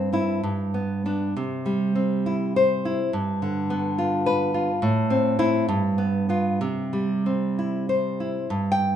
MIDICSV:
0, 0, Header, 1, 2, 480
1, 0, Start_track
1, 0, Key_signature, 0, "major"
1, 0, Tempo, 911854
1, 715, Time_signature, 2, 2, 24, 8
1, 1187, Tempo, 857143
1, 3107, Tempo, 947867
1, 4067, Tempo, 906344
1, 4798, End_track
2, 0, Start_track
2, 0, Title_t, "Nylon-string guitar"
2, 0, Program_c, 0, 24
2, 0, Note_on_c, 0, 43, 51
2, 0, Note_on_c, 0, 60, 35
2, 60, Note_off_c, 0, 60, 0
2, 66, Note_on_c, 0, 60, 32
2, 70, Note_on_c, 0, 64, 46
2, 211, Note_off_c, 0, 43, 0
2, 211, Note_off_c, 0, 60, 0
2, 214, Note_off_c, 0, 64, 0
2, 229, Note_on_c, 0, 43, 42
2, 391, Note_on_c, 0, 59, 35
2, 549, Note_off_c, 0, 59, 0
2, 556, Note_on_c, 0, 59, 30
2, 558, Note_on_c, 0, 62, 40
2, 700, Note_off_c, 0, 59, 0
2, 700, Note_off_c, 0, 62, 0
2, 701, Note_off_c, 0, 43, 0
2, 719, Note_on_c, 0, 48, 48
2, 872, Note_on_c, 0, 55, 37
2, 1029, Note_on_c, 0, 60, 36
2, 1191, Note_on_c, 0, 64, 39
2, 1357, Note_off_c, 0, 64, 0
2, 1360, Note_on_c, 0, 72, 49
2, 1522, Note_on_c, 0, 64, 37
2, 1594, Note_off_c, 0, 55, 0
2, 1615, Note_off_c, 0, 72, 0
2, 1654, Note_off_c, 0, 48, 0
2, 1674, Note_off_c, 0, 60, 0
2, 1678, Note_off_c, 0, 64, 0
2, 1679, Note_on_c, 0, 43, 51
2, 1840, Note_on_c, 0, 50, 39
2, 1997, Note_on_c, 0, 59, 44
2, 2155, Note_on_c, 0, 65, 41
2, 2312, Note_on_c, 0, 71, 58
2, 2461, Note_off_c, 0, 65, 0
2, 2468, Note_on_c, 0, 65, 43
2, 2548, Note_off_c, 0, 50, 0
2, 2562, Note_off_c, 0, 71, 0
2, 2603, Note_off_c, 0, 43, 0
2, 2624, Note_on_c, 0, 45, 63
2, 2625, Note_off_c, 0, 65, 0
2, 2626, Note_off_c, 0, 59, 0
2, 2782, Note_on_c, 0, 60, 48
2, 2935, Note_off_c, 0, 60, 0
2, 2941, Note_on_c, 0, 60, 49
2, 2943, Note_on_c, 0, 64, 65
2, 3090, Note_off_c, 0, 60, 0
2, 3090, Note_off_c, 0, 64, 0
2, 3094, Note_off_c, 0, 45, 0
2, 3108, Note_on_c, 0, 43, 60
2, 3257, Note_on_c, 0, 59, 46
2, 3408, Note_off_c, 0, 59, 0
2, 3414, Note_on_c, 0, 59, 37
2, 3418, Note_on_c, 0, 65, 49
2, 3560, Note_off_c, 0, 59, 0
2, 3562, Note_off_c, 0, 43, 0
2, 3562, Note_off_c, 0, 65, 0
2, 3575, Note_on_c, 0, 48, 49
2, 3738, Note_on_c, 0, 55, 33
2, 3906, Note_on_c, 0, 60, 33
2, 4071, Note_on_c, 0, 64, 34
2, 4230, Note_off_c, 0, 64, 0
2, 4232, Note_on_c, 0, 72, 41
2, 4397, Note_on_c, 0, 64, 28
2, 4477, Note_off_c, 0, 55, 0
2, 4493, Note_off_c, 0, 72, 0
2, 4535, Note_off_c, 0, 48, 0
2, 4555, Note_off_c, 0, 64, 0
2, 4555, Note_on_c, 0, 43, 49
2, 4556, Note_off_c, 0, 60, 0
2, 4669, Note_on_c, 0, 79, 58
2, 4798, Note_off_c, 0, 43, 0
2, 4798, Note_off_c, 0, 79, 0
2, 4798, End_track
0, 0, End_of_file